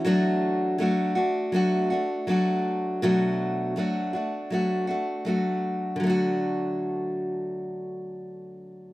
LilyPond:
\new Staff \with { instrumentName = "Steel-string acoustic guitar" } { \time 4/4 \key d \major \tempo 4 = 81 <fis a d' fis'>4 <fis a d' fis'>8 <a d' fis'>8 <fis a d' fis'>8 <a d' fis'>8 <fis a d' fis'>4 | <b, fis a d' fis'>4 <fis a d' fis'>8 <a d' fis'>8 <fis a d' fis'>8 <a d' fis'>8 <fis a d' fis'>4 | <d fis a d' fis'>1 | }